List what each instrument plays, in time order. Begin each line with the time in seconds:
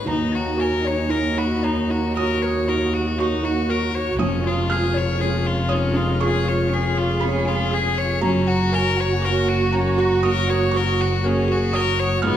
0.05 felt piano D#2 A#5, double bass D#2, analog synth pad A#3 F#4 C#5, cello D#4, synth pluck D#4, viola F#4
0.10 violin D#4
0.32 violin F#4, synth pluck C#5
0.57 synth pluck F#4, violin A#4, felt piano G#5
0.85 synth pluck C#5, violin C#5
1.09 felt piano A#3 F#4 C#5, synth pluck D#4, violin A#4
1.38 violin F#4, felt piano B5
1.63 violin D#4, synth pluck C#5, felt piano A#5
1.90 synth pluck D#4, violin F#4
2.17 felt piano A#3 F#4 C#5 D#6, cello F#4, violin A#4
2.42 synth pluck A#4, violin C#5
2.68 synth pluck D#4, violin A#4
2.93 violin F#4
3.18 felt piano A#3 F#4 C#5 C#6, violin D#4, cello F#4, synth pluck F#4
3.43 synth pluck D#4, violin F#4
3.69 synth pluck A#4, violin A#4
3.95 violin C#5
4.19 double bass F1, felt piano F2 D#6, analog synth pad G#3 F4 C#5, synth pluck C#4, violin C#4, cello F4, viola F4
4.44 violin F4, synth pluck C#5
4.67 synth pluck F4, felt piano F6
4.72 violin G#4
4.94 synth pluck C#5, violin C#5
5.19 felt piano G#3 G#4 C#5, cello C#4, synth pluck C#4, violin G#4
5.47 violin F4
5.69 violin C#4, cello D#4, synth pluck C#5, felt piano D#6
5.94 synth pluck C#4, violin F4
6.20 felt piano G#3 G#4 C#5 C#6, cello F4, violin G#4
6.45 synth pluck G#4, violin C#5
6.69 synth pluck C#4, cello G#4
6.73 violin G#4
6.98 violin F4
7.20 felt piano G#3 G#4 C#5 B5, violin C#4, synth pluck F4
7.45 synth pluck C#4, violin F4
7.70 synth pluck G#4, violin G#4
7.98 violin C#5
8.21 double bass F#1, felt piano F#2 A#5, analog synth pad A#3 F#4 C#5, violin C#4, synth pluck F#4, cello F#4, viola F#4
8.47 violin F#4, synth pluck F#5
8.72 synth pluck A#4, violin A#4, felt piano G#5
8.96 violin C#5, synth pluck F#5
9.22 felt piano A#3 F#4 C#5, synth pluck F#4, violin A#4
9.49 violin F#4
9.72 violin C#4, synth pluck F#5, felt piano A#5
9.98 synth pluck F#4, violin F#4
10.23 felt piano A#3 F#4 C#5 D#6, violin A#4
10.48 synth pluck C#5, violin C#5
10.71 synth pluck F#4, felt piano C#6
10.76 violin A#4
11.01 violin F#4
11.24 felt piano A#3 F#4 C#5, violin C#4, cello G#4, synth pluck A#4
11.48 synth pluck F#4, violin F#4
11.73 cello F#4, violin A#4, synth pluck C#5, felt piano D#6
11.99 violin C#5
12.22 double bass G#1, felt piano G#2 F6, analog synth pad B3 D#4 D#5, violin B3, viola D#4, cello F4, synth pluck G#4